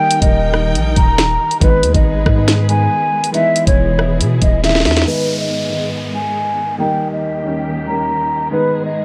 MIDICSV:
0, 0, Header, 1, 7, 480
1, 0, Start_track
1, 0, Key_signature, 5, "minor"
1, 0, Tempo, 431655
1, 1795, Time_signature, 4, 2, 24, 8
1, 10062, End_track
2, 0, Start_track
2, 0, Title_t, "Flute"
2, 0, Program_c, 0, 73
2, 0, Note_on_c, 0, 79, 96
2, 220, Note_off_c, 0, 79, 0
2, 242, Note_on_c, 0, 75, 81
2, 800, Note_off_c, 0, 75, 0
2, 1073, Note_on_c, 0, 82, 86
2, 1751, Note_off_c, 0, 82, 0
2, 1793, Note_on_c, 0, 71, 119
2, 2139, Note_off_c, 0, 71, 0
2, 2163, Note_on_c, 0, 75, 84
2, 2720, Note_off_c, 0, 75, 0
2, 2994, Note_on_c, 0, 80, 93
2, 3671, Note_off_c, 0, 80, 0
2, 3715, Note_on_c, 0, 76, 116
2, 4060, Note_off_c, 0, 76, 0
2, 4082, Note_on_c, 0, 73, 82
2, 4640, Note_off_c, 0, 73, 0
2, 4914, Note_on_c, 0, 75, 79
2, 5129, Note_off_c, 0, 75, 0
2, 5155, Note_on_c, 0, 76, 86
2, 5369, Note_off_c, 0, 76, 0
2, 5394, Note_on_c, 0, 76, 81
2, 5608, Note_off_c, 0, 76, 0
2, 5633, Note_on_c, 0, 71, 96
2, 5979, Note_off_c, 0, 71, 0
2, 6000, Note_on_c, 0, 75, 81
2, 6559, Note_off_c, 0, 75, 0
2, 6834, Note_on_c, 0, 80, 92
2, 7511, Note_off_c, 0, 80, 0
2, 7553, Note_on_c, 0, 79, 90
2, 7899, Note_off_c, 0, 79, 0
2, 7920, Note_on_c, 0, 75, 76
2, 8478, Note_off_c, 0, 75, 0
2, 8751, Note_on_c, 0, 82, 80
2, 9430, Note_off_c, 0, 82, 0
2, 9472, Note_on_c, 0, 71, 114
2, 9819, Note_off_c, 0, 71, 0
2, 9841, Note_on_c, 0, 75, 81
2, 10062, Note_off_c, 0, 75, 0
2, 10062, End_track
3, 0, Start_track
3, 0, Title_t, "String section"
3, 0, Program_c, 1, 48
3, 0, Note_on_c, 1, 51, 86
3, 0, Note_on_c, 1, 63, 80
3, 0, Note_on_c, 1, 70, 77
3, 0, Note_on_c, 1, 79, 91
3, 1777, Note_off_c, 1, 51, 0
3, 1777, Note_off_c, 1, 63, 0
3, 1777, Note_off_c, 1, 70, 0
3, 1777, Note_off_c, 1, 79, 0
3, 1796, Note_on_c, 1, 71, 76
3, 1797, Note_on_c, 1, 56, 83
3, 1797, Note_on_c, 1, 68, 78
3, 3697, Note_off_c, 1, 56, 0
3, 3697, Note_off_c, 1, 68, 0
3, 3697, Note_off_c, 1, 71, 0
3, 3716, Note_on_c, 1, 52, 89
3, 3716, Note_on_c, 1, 68, 77
3, 3717, Note_on_c, 1, 64, 77
3, 5616, Note_off_c, 1, 52, 0
3, 5617, Note_off_c, 1, 64, 0
3, 5617, Note_off_c, 1, 68, 0
3, 5633, Note_on_c, 1, 51, 75
3, 5633, Note_on_c, 1, 59, 73
3, 5634, Note_on_c, 1, 44, 78
3, 5635, Note_on_c, 1, 68, 88
3, 7535, Note_off_c, 1, 44, 0
3, 7535, Note_off_c, 1, 59, 0
3, 7536, Note_off_c, 1, 68, 0
3, 7556, Note_on_c, 1, 39, 80
3, 7556, Note_on_c, 1, 67, 90
3, 7557, Note_on_c, 1, 58, 73
3, 9456, Note_off_c, 1, 39, 0
3, 9456, Note_off_c, 1, 67, 0
3, 9457, Note_off_c, 1, 58, 0
3, 9476, Note_on_c, 1, 44, 83
3, 9477, Note_on_c, 1, 68, 90
3, 9478, Note_on_c, 1, 59, 74
3, 10062, Note_off_c, 1, 44, 0
3, 10062, Note_off_c, 1, 51, 0
3, 10062, Note_off_c, 1, 59, 0
3, 10062, Note_off_c, 1, 68, 0
3, 10062, End_track
4, 0, Start_track
4, 0, Title_t, "Grand piano"
4, 0, Program_c, 2, 0
4, 0, Note_on_c, 2, 51, 112
4, 0, Note_on_c, 2, 55, 86
4, 0, Note_on_c, 2, 58, 89
4, 0, Note_on_c, 2, 63, 105
4, 59, Control_c, 2, 64, 127
4, 203, Note_off_c, 2, 51, 0
4, 207, Note_off_c, 2, 55, 0
4, 210, Note_off_c, 2, 58, 0
4, 214, Note_off_c, 2, 63, 0
4, 226, Note_on_c, 2, 51, 83
4, 233, Note_on_c, 2, 55, 71
4, 241, Note_on_c, 2, 58, 78
4, 249, Note_on_c, 2, 63, 94
4, 558, Note_off_c, 2, 51, 0
4, 562, Note_off_c, 2, 55, 0
4, 566, Note_off_c, 2, 58, 0
4, 570, Note_off_c, 2, 63, 0
4, 580, Note_on_c, 2, 51, 72
4, 588, Note_on_c, 2, 55, 62
4, 596, Note_on_c, 2, 58, 67
4, 604, Note_on_c, 2, 63, 83
4, 1472, Note_off_c, 2, 51, 0
4, 1476, Note_off_c, 2, 55, 0
4, 1480, Note_off_c, 2, 58, 0
4, 1484, Note_off_c, 2, 63, 0
4, 1780, Note_on_c, 2, 51, 97
4, 1788, Note_on_c, 2, 56, 90
4, 1796, Note_on_c, 2, 59, 87
4, 1804, Note_on_c, 2, 63, 105
4, 1807, Control_c, 2, 64, 0
4, 2027, Control_c, 2, 64, 127
4, 2123, Note_off_c, 2, 51, 0
4, 2127, Note_off_c, 2, 56, 0
4, 2131, Note_off_c, 2, 59, 0
4, 2135, Note_off_c, 2, 63, 0
4, 2148, Note_on_c, 2, 51, 79
4, 2155, Note_on_c, 2, 56, 67
4, 2163, Note_on_c, 2, 59, 66
4, 2171, Note_on_c, 2, 63, 87
4, 2593, Note_off_c, 2, 51, 0
4, 2596, Note_off_c, 2, 56, 0
4, 2600, Note_off_c, 2, 59, 0
4, 2604, Note_off_c, 2, 63, 0
4, 2619, Note_on_c, 2, 51, 81
4, 2627, Note_on_c, 2, 56, 70
4, 2635, Note_on_c, 2, 59, 71
4, 2644, Note_on_c, 2, 63, 90
4, 2955, Note_off_c, 2, 51, 0
4, 2959, Note_off_c, 2, 56, 0
4, 2963, Note_off_c, 2, 59, 0
4, 2967, Note_off_c, 2, 63, 0
4, 2989, Note_on_c, 2, 51, 79
4, 2997, Note_on_c, 2, 56, 76
4, 3005, Note_on_c, 2, 59, 69
4, 3013, Note_on_c, 2, 63, 84
4, 3655, Note_off_c, 2, 51, 0
4, 3659, Note_off_c, 2, 56, 0
4, 3663, Note_off_c, 2, 59, 0
4, 3667, Note_off_c, 2, 63, 0
4, 3695, Note_on_c, 2, 52, 95
4, 3705, Note_on_c, 2, 56, 92
4, 3712, Note_on_c, 2, 59, 96
4, 3719, Note_on_c, 2, 63, 114
4, 3730, Control_c, 2, 64, 0
4, 3905, Control_c, 2, 64, 127
4, 4041, Note_off_c, 2, 52, 0
4, 4045, Note_off_c, 2, 56, 0
4, 4049, Note_off_c, 2, 59, 0
4, 4052, Note_off_c, 2, 63, 0
4, 4070, Note_on_c, 2, 52, 74
4, 4078, Note_on_c, 2, 56, 72
4, 4086, Note_on_c, 2, 59, 73
4, 4094, Note_on_c, 2, 64, 89
4, 4401, Note_off_c, 2, 52, 0
4, 4405, Note_off_c, 2, 56, 0
4, 4408, Note_off_c, 2, 59, 0
4, 4413, Note_off_c, 2, 64, 0
4, 4422, Note_on_c, 2, 52, 70
4, 4430, Note_on_c, 2, 56, 66
4, 4437, Note_on_c, 2, 59, 72
4, 4445, Note_on_c, 2, 64, 79
4, 5313, Note_off_c, 2, 52, 0
4, 5317, Note_off_c, 2, 56, 0
4, 5320, Note_off_c, 2, 59, 0
4, 5325, Note_off_c, 2, 64, 0
4, 5621, Note_on_c, 2, 51, 90
4, 5628, Note_on_c, 2, 56, 84
4, 5637, Note_on_c, 2, 59, 92
4, 5644, Note_on_c, 2, 63, 106
4, 5649, Control_c, 2, 64, 0
4, 5867, Control_c, 2, 64, 127
4, 6291, Note_off_c, 2, 51, 0
4, 6295, Note_off_c, 2, 56, 0
4, 6299, Note_off_c, 2, 59, 0
4, 6303, Note_off_c, 2, 63, 0
4, 6340, Note_on_c, 2, 51, 82
4, 6349, Note_on_c, 2, 56, 77
4, 6356, Note_on_c, 2, 59, 68
4, 6364, Note_on_c, 2, 63, 83
4, 7232, Note_off_c, 2, 51, 0
4, 7236, Note_off_c, 2, 56, 0
4, 7240, Note_off_c, 2, 59, 0
4, 7244, Note_off_c, 2, 63, 0
4, 7544, Note_on_c, 2, 51, 100
4, 7552, Note_on_c, 2, 55, 91
4, 7559, Note_on_c, 2, 58, 97
4, 7567, Note_on_c, 2, 63, 104
4, 7570, Control_c, 2, 64, 0
4, 7731, Control_c, 2, 64, 127
4, 8213, Note_off_c, 2, 51, 0
4, 8217, Note_off_c, 2, 55, 0
4, 8221, Note_off_c, 2, 58, 0
4, 8224, Note_off_c, 2, 63, 0
4, 8269, Note_on_c, 2, 51, 82
4, 8277, Note_on_c, 2, 55, 71
4, 8285, Note_on_c, 2, 58, 73
4, 8293, Note_on_c, 2, 61, 89
4, 8714, Note_off_c, 2, 51, 0
4, 8718, Note_off_c, 2, 55, 0
4, 8722, Note_off_c, 2, 58, 0
4, 8726, Note_off_c, 2, 61, 0
4, 8745, Note_on_c, 2, 51, 73
4, 8752, Note_on_c, 2, 55, 64
4, 8760, Note_on_c, 2, 58, 67
4, 8768, Note_on_c, 2, 61, 78
4, 9413, Note_off_c, 2, 51, 0
4, 9417, Note_off_c, 2, 55, 0
4, 9421, Note_off_c, 2, 58, 0
4, 9425, Note_off_c, 2, 61, 0
4, 9464, Note_on_c, 2, 51, 101
4, 9472, Note_on_c, 2, 56, 86
4, 9480, Note_on_c, 2, 59, 89
4, 9488, Note_on_c, 2, 63, 106
4, 9492, Control_c, 2, 64, 0
4, 9670, Control_c, 2, 64, 127
4, 10062, Note_off_c, 2, 51, 0
4, 10062, Note_off_c, 2, 56, 0
4, 10062, Note_off_c, 2, 59, 0
4, 10062, Note_off_c, 2, 63, 0
4, 10062, End_track
5, 0, Start_track
5, 0, Title_t, "808-style bass"
5, 0, Program_c, 3, 38
5, 243, Note_on_c, 3, 27, 109
5, 835, Note_on_c, 3, 34, 100
5, 851, Note_off_c, 3, 27, 0
5, 1063, Note_off_c, 3, 34, 0
5, 1075, Note_on_c, 3, 27, 106
5, 1536, Note_off_c, 3, 27, 0
5, 1796, Note_on_c, 3, 32, 103
5, 2034, Note_on_c, 3, 39, 100
5, 2051, Note_off_c, 3, 32, 0
5, 2156, Note_off_c, 3, 39, 0
5, 2162, Note_on_c, 3, 32, 106
5, 2501, Note_off_c, 3, 32, 0
5, 2514, Note_on_c, 3, 44, 105
5, 3206, Note_off_c, 3, 44, 0
5, 4082, Note_on_c, 3, 28, 108
5, 4676, Note_on_c, 3, 47, 102
5, 4692, Note_off_c, 3, 28, 0
5, 4903, Note_off_c, 3, 47, 0
5, 4916, Note_on_c, 3, 27, 105
5, 5396, Note_on_c, 3, 40, 97
5, 5413, Note_off_c, 3, 27, 0
5, 5624, Note_off_c, 3, 40, 0
5, 10062, End_track
6, 0, Start_track
6, 0, Title_t, "Downlifter"
6, 0, Program_c, 4, 103
6, 5636, Note_on_c, 4, 60, 81
6, 9475, Note_off_c, 4, 60, 0
6, 10062, End_track
7, 0, Start_track
7, 0, Title_t, "Drums"
7, 118, Note_on_c, 9, 42, 102
7, 229, Note_off_c, 9, 42, 0
7, 243, Note_on_c, 9, 36, 98
7, 243, Note_on_c, 9, 42, 80
7, 354, Note_off_c, 9, 36, 0
7, 355, Note_off_c, 9, 42, 0
7, 596, Note_on_c, 9, 37, 109
7, 707, Note_off_c, 9, 37, 0
7, 838, Note_on_c, 9, 42, 90
7, 949, Note_off_c, 9, 42, 0
7, 1071, Note_on_c, 9, 42, 74
7, 1076, Note_on_c, 9, 36, 93
7, 1183, Note_off_c, 9, 42, 0
7, 1187, Note_off_c, 9, 36, 0
7, 1316, Note_on_c, 9, 38, 123
7, 1319, Note_on_c, 9, 42, 72
7, 1427, Note_off_c, 9, 38, 0
7, 1431, Note_off_c, 9, 42, 0
7, 1680, Note_on_c, 9, 42, 73
7, 1791, Note_off_c, 9, 42, 0
7, 1794, Note_on_c, 9, 42, 71
7, 1795, Note_on_c, 9, 36, 120
7, 1906, Note_off_c, 9, 42, 0
7, 1907, Note_off_c, 9, 36, 0
7, 2036, Note_on_c, 9, 42, 98
7, 2147, Note_off_c, 9, 42, 0
7, 2162, Note_on_c, 9, 36, 97
7, 2163, Note_on_c, 9, 42, 76
7, 2273, Note_off_c, 9, 36, 0
7, 2274, Note_off_c, 9, 42, 0
7, 2514, Note_on_c, 9, 36, 105
7, 2515, Note_on_c, 9, 37, 105
7, 2625, Note_off_c, 9, 36, 0
7, 2626, Note_off_c, 9, 37, 0
7, 2756, Note_on_c, 9, 38, 110
7, 2757, Note_on_c, 9, 42, 89
7, 2867, Note_off_c, 9, 38, 0
7, 2868, Note_off_c, 9, 42, 0
7, 2991, Note_on_c, 9, 42, 71
7, 3102, Note_off_c, 9, 42, 0
7, 3600, Note_on_c, 9, 42, 82
7, 3711, Note_off_c, 9, 42, 0
7, 3714, Note_on_c, 9, 42, 70
7, 3826, Note_off_c, 9, 42, 0
7, 3956, Note_on_c, 9, 42, 99
7, 4067, Note_off_c, 9, 42, 0
7, 4082, Note_on_c, 9, 36, 97
7, 4082, Note_on_c, 9, 42, 78
7, 4193, Note_off_c, 9, 36, 0
7, 4193, Note_off_c, 9, 42, 0
7, 4435, Note_on_c, 9, 37, 104
7, 4547, Note_off_c, 9, 37, 0
7, 4677, Note_on_c, 9, 42, 86
7, 4788, Note_off_c, 9, 42, 0
7, 4910, Note_on_c, 9, 42, 78
7, 4915, Note_on_c, 9, 36, 91
7, 5022, Note_off_c, 9, 42, 0
7, 5027, Note_off_c, 9, 36, 0
7, 5156, Note_on_c, 9, 38, 64
7, 5160, Note_on_c, 9, 42, 71
7, 5219, Note_off_c, 9, 38, 0
7, 5219, Note_on_c, 9, 38, 61
7, 5271, Note_off_c, 9, 42, 0
7, 5283, Note_off_c, 9, 38, 0
7, 5283, Note_on_c, 9, 38, 79
7, 5339, Note_off_c, 9, 38, 0
7, 5339, Note_on_c, 9, 38, 73
7, 5396, Note_off_c, 9, 38, 0
7, 5396, Note_on_c, 9, 38, 91
7, 5397, Note_on_c, 9, 46, 60
7, 5460, Note_off_c, 9, 38, 0
7, 5460, Note_on_c, 9, 38, 86
7, 5508, Note_off_c, 9, 46, 0
7, 5521, Note_on_c, 9, 42, 74
7, 5523, Note_off_c, 9, 38, 0
7, 5523, Note_on_c, 9, 38, 100
7, 5578, Note_off_c, 9, 38, 0
7, 5578, Note_on_c, 9, 38, 95
7, 5632, Note_off_c, 9, 42, 0
7, 5690, Note_off_c, 9, 38, 0
7, 10062, End_track
0, 0, End_of_file